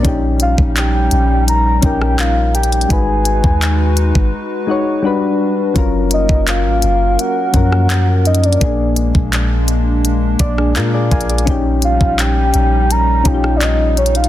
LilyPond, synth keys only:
\new Staff \with { instrumentName = "Synth keys" } { \time 4/4 \key dis \minor \tempo 4 = 84 << { r1 | r1 | r1 | r2 r8 d''16 <d' gis'>16 <eis' ais' eis''>16 <gis' d''>16 <ais' eis'' gis''>16 <gis' d''>16~ |
<gis' d''>16 r2. r8. | } \\ { <cis' dis' g'>4. r4 <cis' dis' ais'>4 r8 | <gis dis' fis' b'>4. r4 <gis dis' fis' cis''>8 <g d' fis' b'>4 | <fis cis' eis' ais'>4. r4 <eis fis cis' ais'>4 r8 | <ais, ais d' gis'>4. r2 r8 |
<cis' dis' g'>4. r4 <cis' dis' eis' g'>4 r8 | } >> }